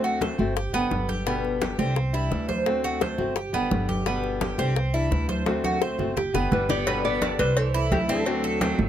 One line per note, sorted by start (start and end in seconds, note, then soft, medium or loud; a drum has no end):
0.00 0.33 D2 medium
0.00 0.20 D3 medium
0.00 0.21 A3 medium
0.00 0.21 C4 medium
0.00 0.21 F#4 medium
0.04 high bongo soft
0.04 high conga soft
0.21 0.38 D3 soft
0.21 0.38 A3 medium
0.21 0.38 C4 medium
0.21 0.37 F#4 medium
0.21 0.55 C5 medium
0.21 high bongo medium
0.21 high conga medium
0.38 0.71 G1 medium
0.38 0.56 A3 medium
0.38 0.56 C4 medium
0.38 0.55 F#4 medium
0.38 high bongo soft
0.38 high conga soft
0.56 0.73 G4 medium
0.56 muted steel-string acoustic guitar stroke medium
0.56 high bongo medium
0.56 high conga soft
0.73 0.90 F#1 medium
0.73 0.89 D3 medium
0.73 0.90 G3 medium
0.73 1.08 B3 medium
0.73 0.90 B3 medium
0.73 0.90 G4 medium
0.73 high conga soft
0.91 1.73 G1 medium
0.91 1.25 D3 soft
0.91 1.26 G3 soft
0.91 1.26 B3 soft
0.91 1.26 G4 medium
0.91 high bongo soft
0.91 low bongo medium
0.91 high conga medium
1.09 1.26 G4 medium
1.09 high bongo soft
1.09 high conga medium
1.26 1.60 B2 medium
1.26 1.59 D3 medium
1.26 1.60 G3 medium
1.26 1.60 B3 medium
1.26 1.61 G4 medium
1.26 high bongo medium
1.26 high conga soft
1.44 high bongo soft
1.44 high conga soft
1.60 1.78 D3 soft
1.60 1.78 G3 soft
1.60 1.78 B3 medium
1.60 1.78 G4 medium
1.60 1.77 G4 medium
1.60 high bongo medium
1.60 high conga medium
1.78 2.27 C2 medium
1.78 1.96 D3 medium
1.78 1.95 G3 medium
1.78 1.96 B3 medium
1.78 2.13 C4 medium
1.78 1.95 G4 medium
1.78 high bongo soft
1.78 high conga soft
1.96 muted steel-string acoustic guitar stroke medium
1.96 high bongo medium
1.96 high conga soft
2.13 2.30 E3 medium
2.13 2.30 G3 medium
2.13 2.31 D4 medium
2.13 2.30 E4 medium
2.13 2.48 E4 medium
2.13 high conga soft
2.31 3.13 D2 medium
2.31 2.65 E3 soft
2.31 2.66 G3 medium
2.31 2.66 D4 soft
2.31 2.66 E4 medium
2.31 high bongo soft
2.31 low bongo medium
2.31 high conga soft
2.49 2.83 C5 medium
2.49 high bongo soft
2.49 high conga medium
2.66 3.00 D3 medium
2.66 3.00 A3 medium
2.66 3.01 C4 medium
2.66 3.01 F#4 medium
2.66 high bongo medium
2.66 high conga soft
2.84 3.01 F#4 medium
2.84 high bongo soft
2.84 high conga soft
3.01 3.18 D3 soft
3.01 3.18 A3 soft
3.01 3.18 C4 medium
3.01 3.17 F#4 medium
3.01 3.35 C5 medium
3.01 high bongo medium
3.01 high conga medium
3.18 3.51 G1 medium
3.18 3.36 A3 medium
3.18 3.36 C4 medium
3.18 3.35 F#4 medium
3.18 high bongo soft
3.18 high conga soft
3.36 3.53 G4 medium
3.36 muted steel-string acoustic guitar stroke medium
3.36 high bongo medium
3.36 high conga soft
3.53 3.70 F#1 medium
3.53 3.70 D3 medium
3.53 3.70 G3 medium
3.53 3.70 B3 medium
3.53 3.88 B3 medium
3.53 3.70 G4 medium
3.53 high conga soft
3.71 4.53 G1 medium
3.71 4.05 D3 medium
3.71 4.06 G3 soft
3.71 4.06 B3 soft
3.71 4.06 G4 medium
3.71 high bongo soft
3.71 low bongo medium
3.71 high conga medium
3.89 4.06 G4 medium
3.89 high bongo soft
3.89 high conga medium
4.06 4.40 B2 medium
4.06 4.40 D3 medium
4.06 4.40 G3 medium
4.06 4.40 B3 medium
4.06 4.41 B3 medium
4.06 4.41 G4 medium
4.06 high bongo medium
4.06 high conga soft
4.24 high bongo soft
4.24 high conga soft
4.41 4.58 D3 medium
4.41 4.58 G3 soft
4.41 4.58 B3 soft
4.41 4.58 G4 medium
4.41 4.57 G4 medium
4.41 high bongo medium
4.41 high conga medium
4.58 5.07 C2 medium
4.58 4.76 D3 medium
4.58 4.75 G3 medium
4.58 4.76 B3 medium
4.58 4.93 C4 medium
4.58 4.75 G4 medium
4.58 high bongo soft
4.58 high conga soft
4.76 muted steel-string acoustic guitar stroke medium
4.76 high bongo medium
4.76 high conga soft
4.94 5.09 E3 medium
4.94 5.10 G3 medium
4.94 5.11 D4 medium
4.94 5.11 E4 medium
4.94 5.28 E4 medium
4.94 high conga soft
5.11 5.93 D2 medium
5.11 5.45 E3 medium
5.11 5.46 G3 medium
5.11 5.46 D4 medium
5.11 5.46 E4 medium
5.11 high bongo soft
5.11 low bongo medium
5.11 high conga soft
5.29 5.63 C5 medium
5.29 high bongo soft
5.29 high conga medium
5.46 5.79 D3 medium
5.46 5.80 A3 medium
5.46 5.81 C4 medium
5.46 5.81 F#4 medium
5.46 high bongo medium
5.46 high conga medium
5.64 5.81 F#4 medium
5.64 high bongo soft
5.64 high conga medium
5.80 5.98 D3 soft
5.80 5.98 A3 medium
5.80 5.98 C4 medium
5.80 5.97 F#4 soft
5.80 6.16 C5 medium
5.80 high bongo medium
5.98 6.31 G1 medium
5.98 6.16 A3 medium
5.98 6.16 C4 medium
5.98 6.15 F#4 medium
5.98 high bongo soft
5.98 low conga medium
6.16 6.34 G4 medium
6.16 muted steel-string acoustic guitar stroke medium
6.16 high bongo medium
6.16 low conga medium
6.34 6.50 F#1 medium
6.34 6.50 D3 medium
6.34 6.50 G3 medium
6.34 6.51 B3 medium
6.34 6.68 B3 medium
6.34 6.51 G4 medium
6.34 high bongo medium
6.34 low conga medium
6.51 7.33 G1 medium
6.51 6.86 D3 medium
6.51 6.86 G3 soft
6.51 6.68 G3 medium
6.51 6.86 B3 medium
6.51 6.86 G4 medium
6.51 6.70 B4 medium
6.51 low bongo medium
6.51 low conga medium
6.69 7.02 B3 medium
6.69 6.86 G4 medium
6.69 7.04 D5 medium
6.69 low bongo medium
6.69 low conga medium
6.86 7.21 B2 medium
6.86 7.20 D3 medium
6.86 7.20 G3 medium
6.86 7.21 B3 medium
6.86 7.21 G4 medium
6.86 cowbell loud
6.86 high conga soft
7.04 7.37 B3 medium
7.04 7.40 D5 loud
7.04 high conga soft
7.21 7.55 D3 medium
7.21 7.56 G3 soft
7.21 7.56 B3 medium
7.21 7.39 D4 medium
7.21 7.56 G4 medium
7.21 cowbell medium
7.21 high conga loud
7.39 7.88 C2 medium
7.39 7.58 G3 medium
7.39 7.57 B4 medium
7.39 7.73 C5 medium
7.39 cowbell medium
7.39 high conga soft
7.56 7.91 E3 medium
7.56 7.92 A4 loud
7.56 muted steel-string acoustic guitar stroke medium
7.56 cowbell loud
7.56 high conga soft
7.74 8.08 E4 medium
7.74 high conga soft
7.91 8.73 D2 medium
7.91 8.08 E3 soft
7.91 8.00 E3 medium
7.91 8.08 G3 medium
7.91 8.08 D4 medium
7.91 8.07 E4 medium
7.91 7.97 G4 medium
7.91 cowbell medium
7.91 high conga medium
8.08 8.25 E3 medium
8.08 8.89 F#3 medium
8.08 8.26 G3 medium
8.08 8.43 C4 loud
8.08 8.26 D4 medium
8.08 8.25 E4 medium
8.08 8.89 A4 medium
8.08 high conga medium
8.25 8.60 D3 medium
8.25 8.60 A3 medium
8.25 8.61 C4 medium
8.25 8.61 F#4 medium
8.25 cowbell loud
8.25 high conga soft
8.44 8.61 A4 medium
8.44 high conga soft
8.61 8.89 D3 medium
8.61 8.89 A3 medium
8.61 8.78 C4 medium
8.61 8.89 C4 medium
8.61 8.89 F#4 medium
8.61 cowbell medium
8.61 high conga loud
8.78 8.89 G1 loud
8.78 high conga soft
8.78 low conga medium